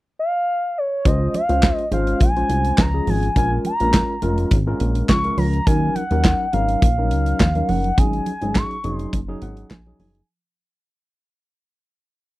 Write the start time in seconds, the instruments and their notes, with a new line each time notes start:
0.19 analog synth lead F5
0.78 analog synth lead C#5
1.05 analog synth bass C#2, tine electric piano G#3 C#4 F4 C5, analog synth lead D#5, kick, closed hi-hat, muted conga
1.34 analog synth lead F5, closed hi-hat, muted conga
1.49 analog synth bass C#2, tine electric piano G#3 C#4 F4 C5, closed hi-hat
1.63 kick, snare, clap, closed hi-hat, high conga
1.76 analog synth lead D#5, closed hi-hat
1.92 analog synth bass G#1, tine electric piano G#3 C#4 F4 C5, analog synth lead F5, closed hi-hat, muted conga
2.07 closed hi-hat
2.20 analog synth bass A#1, analog synth lead G#5, kick, closed hi-hat, muted conga
2.36 tine electric piano G#3 C#4 F4 C5, closed hi-hat
2.49 analog synth bass C2, closed hi-hat
2.65 closed hi-hat
2.78 analog synth bass C#2, analog synth lead A#5, kick, snare, clap, closed hi-hat, high conga
2.93 tine electric piano G#3 C#4 F4 G#4
3.07 analog synth bass G#1, analog synth lead G#5, open hi-hat, high conga
3.23 closed hi-hat
3.36 analog synth bass A#1, tine electric piano G#3 C#4 F4 A#4, analog synth lead G#5, kick, closed hi-hat, muted conga
3.65 analog synth lead A#5, closed hi-hat, muted conga
3.80 analog synth bass A#1, tine electric piano G#3 C#4 F4 A#4, closed hi-hat
3.93 kick, snare, clap, closed hi-hat, high conga
4.22 analog synth bass F1, tine electric piano G#3 C#4 F4 A#4, closed hi-hat, muted conga
4.38 closed hi-hat
4.51 analog synth bass G#1, kick, closed hi-hat, muted conga
4.67 tine electric piano G#3 C#4 F4 A#4
4.80 analog synth bass A#1, closed hi-hat
4.95 closed hi-hat
5.09 analog synth bass C#2, analog synth lead C#6, kick, snare, clap, closed hi-hat, high conga
5.24 tine electric piano G#3 C#4 F4 A#4, closed hi-hat
5.38 analog synth bass C#2, analog synth lead A#5, open hi-hat, high conga
5.53 closed hi-hat
5.66 analog synth bass D#2, tine electric piano F#3 C#4 D#4 A#4, analog synth lead G#5, kick, closed hi-hat
5.95 analog synth lead F#5, closed hi-hat, muted conga
6.11 analog synth bass D#2, tine electric piano F#3 C#4 D#4 A#4, closed hi-hat
6.24 kick, snare, clap, closed hi-hat, high conga
6.52 analog synth bass G#1, tine electric piano F#3 C#4 D#4 A#4, analog synth lead F5, closed hi-hat, muted conga
6.68 closed hi-hat
6.82 analog synth bass A#1, kick, closed hi-hat, muted conga
6.98 tine electric piano F3 C#4 D#4 A#4
7.04 tine electric piano F#3
7.11 analog synth bass C#2, closed hi-hat
7.26 closed hi-hat
7.40 analog synth bass D#2, kick, snare, clap, closed hi-hat, high conga
7.55 tine electric piano F#3 C#4 D#4 A#4, closed hi-hat
7.69 analog synth bass F#1, analog synth lead F#5, open hi-hat, high conga
7.84 closed hi-hat
7.97 analog synth bass G#1, tine electric piano F#3 C#4 D#4 G#4, analog synth lead G#5, kick, closed hi-hat, muted conga
8.13 closed hi-hat
8.26 closed hi-hat, muted conga
8.41 analog synth bass G#1, tine electric piano F#3 C#4 D#4 G#4, closed hi-hat
8.55 analog synth lead C#6, kick, snare, clap, closed hi-hat, high conga
8.71 closed hi-hat
8.84 analog synth bass F1, tine electric piano F#3 C#4 D#4 G#4, closed hi-hat, muted conga
8.95 analog synth lead C6
8.99 closed hi-hat
9.13 analog synth bass F#1, kick, closed hi-hat, muted conga
9.28 tine electric piano F#3 C#4 D#4 G#4
9.42 analog synth bass G#1, tine electric piano F#5, closed hi-hat
9.57 closed hi-hat
9.71 analog synth bass A#1, tine electric piano G#5, kick, snare, clap, closed hi-hat, high conga
9.86 tine electric piano F#3 C#4 D#4 G#4, high conga
9.99 analog synth bass F#1, tine electric piano G#5, open hi-hat, high conga
10.15 closed hi-hat